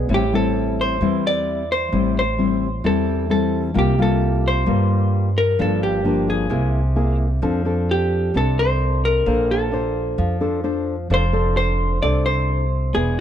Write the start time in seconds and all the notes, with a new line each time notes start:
0.09 A1 A2 G3 C4 E4
0.14 G4
0.33 G3 C4 E4 A4
0.81 C5
1.01 E2 E3 G3 C4 E4
1.27 D5
1.72 C5
1.92 A1 A2 G3 C4 E4
2.19 C5
2.38 G3 C4 E4
2.84 E2 E3 G3 C4 E4 A4
3.29 G3 C4 E4 A4
3.74 C2 C3 G3 A#3 F4
3.79 G4
3.98 G3 A#3 F4 A4
4.48 C5
4.66 G2 G3 A#3 F4
5.38 A#4
5.59 G1 G2 F3 A#3 D4 A4
5.83 G4
6.04 F3 A#3 D4
6.30 G#4
6.50 C2 C3 A#3 E4 G#4
6.96 A#3 E4 G#4
7.42 F2 F3 C4 D4 A4
7.65 C4 D4 A4
7.91 G4
8.34 C2 C3 C4 D4 A4
8.59 C5
9.05 A#4
9.26 A#1 A#3 D4 A4 C5
9.51 A4
9.72 D4 A4 C5
10.18 F2 F3
10.41 D4 A4 C5
10.64 D4 A4 C5
11.10 F1 F3 D4 A4 C5
11.33 D4 A4 C5
11.57 C5
12.02 C2 C3 D4 A4 C5 D5
12.26 C5
12.93 E1 E3 B3 D4 G#4